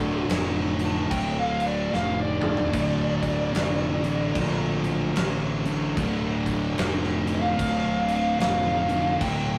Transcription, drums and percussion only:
0.29 snare, crash
0.79 crash
1.11 kick, crash
1.60 crash
1.94 snare
2.41 mid tom
2.57 floor tom
2.74 kick, crash
3.23 kick, crash
3.55 snare, crash
4.04 crash
4.35 kick, crash
4.84 crash
5.16 snare, crash
5.65 crash
5.97 kick, crash
6.46 kick, crash
6.78 snare, crash
7.04 snare
7.27 crash
7.59 kick, crash
8.08 crash
8.40 snare, crash
8.89 crash
9.21 kick, crash

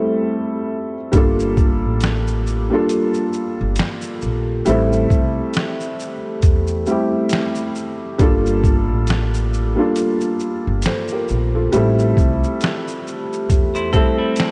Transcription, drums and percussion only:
1.13 kick, closed hi-hat, shaker
1.39 shaker
1.57 kick, shaker
2.01 snare, closed hi-hat, shaker
2.27 shaker
2.47 shaker
2.89 closed hi-hat, shaker
3.14 shaker
3.33 shaker
3.76 snare, closed hi-hat, shaker
4.01 shaker
4.22 shaker
4.66 closed hi-hat, shaker
4.92 shaker
5.10 kick, shaker
5.54 snare, closed hi-hat, shaker
5.81 shaker
6.00 shaker
6.42 kick, closed hi-hat, shaker
6.67 shaker
6.86 shaker
7.29 snare, closed hi-hat, shaker
7.55 shaker
7.75 shaker
8.19 kick, closed hi-hat, shaker
8.46 shaker
8.64 kick, shaker
9.07 snare, closed hi-hat, shaker
9.34 shaker
9.53 shaker
9.96 closed hi-hat, shaker
10.21 shaker
10.40 shaker
10.82 snare, closed hi-hat, shaker
11.08 shaker
11.28 shaker
11.73 closed hi-hat, shaker
11.99 shaker
12.17 kick, shaker
12.44 shaker
12.61 snare, closed hi-hat, shaker
12.88 shaker
13.07 shaker
13.33 shaker
13.50 kick, closed hi-hat, shaker
13.75 shaker
13.93 kick, shaker
14.36 snare, closed hi-hat, shaker

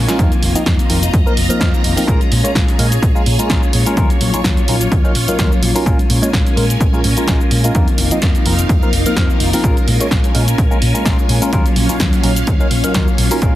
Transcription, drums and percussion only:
0.09 snare, closed hi-hat, shaker, maracas
0.19 kick, closed hi-hat, shaker
0.32 closed hi-hat, shaker
0.43 open hi-hat
0.55 closed hi-hat, shaker
0.66 kick, snare, closed hi-hat, shaker
0.79 closed hi-hat, shaker
0.90 open hi-hat
1.03 closed hi-hat, shaker
1.14 kick, closed hi-hat, shaker
1.27 shaker
1.37 open hi-hat
1.50 closed hi-hat, shaker
1.61 kick, snare, closed hi-hat, shaker
1.74 shaker
1.84 open hi-hat
1.97 open hi-hat, shaker
2.08 kick, closed hi-hat, shaker
2.21 closed hi-hat, shaker
2.32 open hi-hat
2.45 closed hi-hat, shaker
2.55 kick, snare, closed hi-hat, shaker
2.68 closed hi-hat, shaker
2.79 open hi-hat
2.92 closed hi-hat, shaker
3.03 kick, closed hi-hat, shaker
3.16 shaker
3.26 open hi-hat
3.39 closed hi-hat, shaker
3.50 kick, snare, closed hi-hat, shaker
3.63 shaker
3.73 open hi-hat
3.86 closed hi-hat, shaker
3.97 kick, closed hi-hat, shaker
4.10 closed hi-hat, shaker
4.21 open hi-hat
4.34 closed hi-hat, shaker
4.44 kick, snare, closed hi-hat, shaker
4.57 closed hi-hat, shaker
4.68 open hi-hat
4.81 closed hi-hat, shaker
4.92 kick, closed hi-hat, shaker
5.05 shaker
5.15 open hi-hat
5.28 closed hi-hat, shaker
5.39 kick, snare, closed hi-hat, shaker
5.52 shaker
5.63 open hi-hat
5.76 open hi-hat, shaker
5.86 kick, closed hi-hat, shaker
5.99 closed hi-hat, shaker
6.10 open hi-hat
6.23 closed hi-hat, shaker
6.33 kick, snare, closed hi-hat, shaker
6.47 closed hi-hat, shaker
6.57 open hi-hat
6.70 closed hi-hat, shaker
6.81 kick, closed hi-hat, shaker
6.94 shaker
7.04 open hi-hat
7.17 closed hi-hat, shaker
7.28 kick, snare, closed hi-hat, shaker
7.41 shaker
7.51 open hi-hat
7.64 closed hi-hat, shaker
7.75 kick, closed hi-hat, shaker
7.88 closed hi-hat, shaker
7.98 open hi-hat
8.11 closed hi-hat, shaker
8.22 kick, snare, closed hi-hat, shaker
8.35 closed hi-hat, shaker
8.46 open hi-hat
8.59 closed hi-hat, shaker
8.69 kick, closed hi-hat, shaker
8.83 shaker
8.93 open hi-hat
9.06 closed hi-hat, shaker
9.17 kick, snare, closed hi-hat, shaker
9.30 shaker
9.40 open hi-hat
9.53 open hi-hat, shaker
9.64 kick, closed hi-hat, shaker
9.77 closed hi-hat, shaker
9.88 open hi-hat
10.01 closed hi-hat, shaker
10.11 kick, snare, closed hi-hat, shaker
10.24 closed hi-hat, shaker
10.35 open hi-hat
10.48 closed hi-hat, shaker
10.58 kick, closed hi-hat, shaker
10.71 shaker
10.82 open hi-hat
10.95 closed hi-hat, shaker
11.06 kick, snare, closed hi-hat, shaker
11.19 shaker
11.29 open hi-hat
11.42 closed hi-hat, shaker
11.53 kick, closed hi-hat, shaker
11.66 closed hi-hat, shaker
11.76 open hi-hat
11.89 closed hi-hat, shaker
12.00 kick, snare, closed hi-hat, shaker
12.13 closed hi-hat, shaker
12.24 open hi-hat
12.36 closed hi-hat, shaker
12.47 kick, closed hi-hat, shaker
12.61 shaker
12.71 open hi-hat
12.84 closed hi-hat, shaker
12.94 kick, snare, closed hi-hat, shaker
13.08 shaker
13.18 open hi-hat
13.31 open hi-hat, shaker
13.42 kick, closed hi-hat, shaker

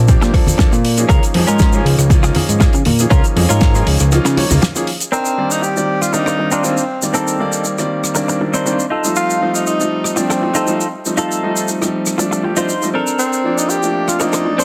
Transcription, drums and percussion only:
0.08 kick, closed hi-hat, shaker
0.22 snare, closed hi-hat, shaker
0.34 kick, cross-stick, open hi-hat
0.47 open hi-hat, low conga, shaker
0.59 kick, snare, closed hi-hat, shaker
0.73 closed hi-hat, shaker
0.85 open hi-hat
0.98 closed hi-hat, shaker
1.09 kick, closed hi-hat, shaker
1.23 closed hi-hat, shaker
1.34 open hi-hat, high conga
1.47 closed hi-hat, shaker
1.59 kick, snare, closed hi-hat, shaker
1.73 shaker
1.86 open hi-hat
1.99 cross-stick, closed hi-hat, shaker
2.10 kick, closed hi-hat, shaker
2.23 cross-stick, closed hi-hat, shaker
2.35 open hi-hat, low conga
2.49 closed hi-hat, shaker
2.61 kick, snare, closed hi-hat, shaker
2.73 closed hi-hat, shaker
2.85 open hi-hat, low conga
2.99 closed hi-hat, shaker
3.11 kick, closed hi-hat, shaker
3.24 closed hi-hat, shaker
3.36 open hi-hat, high conga
3.50 closed hi-hat, shaker
3.61 kick, snare, closed hi-hat, shaker
3.75 cross-stick, closed hi-hat, shaker
3.87 open hi-hat
4.00 cross-stick, closed hi-hat, shaker
4.12 closed hi-hat, shaker
4.25 snare, closed hi-hat, shaker
4.37 cross-stick, open hi-hat, high conga
4.50 open hi-hat, low conga, shaker
4.62 snare, closed hi-hat, shaker
4.76 closed hi-hat, shaker
4.87 open hi-hat
5.00 closed hi-hat, shaker
5.13 shaker
5.25 shaker
5.51 shaker
5.63 shaker
5.77 shaker
6.02 cross-stick, shaker
6.14 shaker
6.26 cross-stick, shaker
6.52 shaker
6.64 shaker
6.77 shaker
7.02 shaker
7.14 shaker
7.28 shaker
7.53 shaker
7.65 shaker
7.78 cross-stick, shaker
8.04 cross-stick, shaker
8.15 shaker
8.29 shaker
8.54 shaker
8.67 shaker
8.79 shaker
9.05 shaker
9.16 shaker
9.30 shaker
9.55 shaker
9.67 shaker
9.81 shaker
10.04 cross-stick, shaker
10.17 shaker
10.30 cross-stick, shaker
10.55 shaker
10.67 shaker
10.81 shaker
11.06 shaker
11.17 shaker
11.32 shaker
11.57 shaker
11.68 shaker
11.82 cross-stick, shaker
12.06 cross-stick, shaker
12.19 shaker
12.32 shaker
12.57 shaker
12.69 shaker
12.82 shaker
13.07 shaker
13.19 shaker
13.33 shaker
13.58 shaker
13.70 shaker
13.83 shaker
14.08 cross-stick, shaker
14.20 shaker
14.33 cross-stick, shaker
14.60 shaker

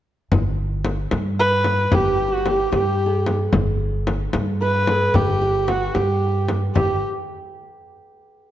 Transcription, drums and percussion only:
0.32 frame drum
0.85 frame drum
1.11 frame drum
1.64 frame drum
1.92 frame drum
2.46 frame drum
2.73 frame drum
3.26 frame drum
3.53 frame drum
4.07 frame drum
4.33 frame drum
4.87 frame drum
5.14 frame drum
5.68 frame drum
5.95 frame drum
6.49 frame drum
6.76 frame drum

